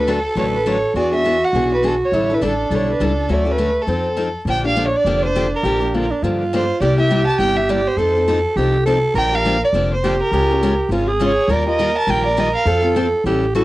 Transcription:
Already playing: D2 A4 B4
0.07 D3 F#3 A3 D4 F#4 A4 B4
0.36 A1 D3 F#3 A3 D4 F#4 B4 C#5
0.56 B4
0.66 D3 F#3 A3 D4 F#4 B4 C#5
0.94 E2 E3 B3 D4 F#4 G#4 D5
1.12 B3 D4 G#4 E5
1.25 E3 B3 D4 G#4
1.44 F#5
1.53 B1 E3 B3 D4 G#4
1.74 B4
1.83 E3 B3 D4 G#4
1.87 A4
2.04 C#5
2.12 A1 D3 G3 D4 E4 A4
2.30 D4 E4 A4
2.34 B4
2.41 A1 D3 G3 D4 E4 A4
2.46 A4
2.70 B1 D3 G3 D4 E4 A4
2.75 C#5
2.92 B4
3.00 C#2 D3 G3 D4 E4 A4
3.04 A4
3.29 D2 D3 F#3 A3 C#4 F#4
3.33 D5
3.45 A3 C#4 F#4
3.51 B4
3.58 D3 F#3 A3 C#4 F#4
3.82 A4
3.87 F2 F3 C4 D#4 A4
4.17 F3 C4 D#4 A4
4.45 A#1 D3 F3 A#3 D4 G4
4.50 G5
4.64 A#3 D4 G4 F5
4.76 D3 F3 A#3 D4 G4
4.87 C#5
4.96 D5
5.05 F1 D3 F3 A#3 D4 G4
5.24 C5
5.35 D3 F3 A#3 D4 G4
5.55 A#4
5.63 A#1 D3 F3 A#3 D4 G4
5.80 A#3 D4 G4
5.94 D3 F3 A#3 D4 F4 G4
6.11 D4
6.22 G2 D3 F3 A#3 D4 F4 G4
6.53 D3 F3 A#3 D4 G4 C5
6.81 C2 C3 G3 A#3 E4 G4 D5
6.98 A#3 E4 G4 E5
7.11 C3 G3 A#3 E4 G4
7.27 A5
7.39 G1 C3 G3 A#3 E4 G4 G5
7.57 E5
7.69 C3 G3 A#3 E4 G4 D5
7.87 C5
7.97 F2 F3 C4 D#4 A4
8.15 C4 D#4 A4
8.28 F3 C4 D#4 A4
8.56 C2 F3 C4 D#4 G4 A4
8.86 F3 C4 D#4 A4
9.14 A#1 D3 F3 A#3 D4 G4 A#4 G5
9.32 A#3 D4 G4 F5
9.45 D3 F3 A#3 D4 G4
9.64 D5
9.73 F1 D3 F3 A#3 D4 G4
9.93 C5
10.04 D3 F3 A#3 D4 G4
10.22 A#4
10.31 C#2 C#3 G#3 C#4 F4 G4 G#4
10.51 C#4 F4 G#4
10.63 C#3 G#3 C#4 F4 G#4
10.89 G#1 C#3 G#3 C#4 F4 G#4
11.08 G#4
11.20 C#3 G#3 C#4 F4 G#4 C#5
11.48 D#2 D#3 G3 A#3 F4 G4 A#4
11.52 D5
11.66 A#3 F4 G4 D#5
11.79 D#3 G3 A#3 F4 G4
11.98 A5
12.07 A#1 D#3 G3 A#3 F4 G4 G5
12.26 D5
12.37 D#3 G3 A#3 F4 G4 D#5
12.55 F5
12.66 F2 F3 C4 F4 A4
12.83 C4 F4 A4
12.96 F3 C4 F4 A4
13.24 A1 E3 G3 C#4 E4 G4 A4
13.55 E3 G3 C#4 E4 F#4 A4

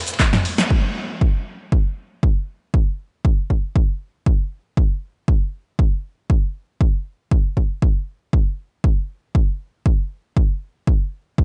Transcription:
0.00 snare, ride
0.06 snare, closed hi-hat, ride, shaker
0.13 snare, ride
0.19 kick, snare, clap, ride, shaker
0.33 snare, closed hi-hat, mid tom, ride, shaker
0.45 snare, open hi-hat, ride
0.58 snare, closed hi-hat, shaker
0.70 kick
1.21 kick
1.72 kick
2.23 kick
2.74 kick
3.25 kick
3.50 kick
3.76 kick
4.26 kick
4.77 kick
5.28 kick
5.79 kick
6.30 kick
6.81 kick
7.31 kick
7.57 kick
7.82 kick
8.33 kick
8.84 kick
9.35 kick
9.86 kick
10.37 kick
10.87 kick
11.38 kick

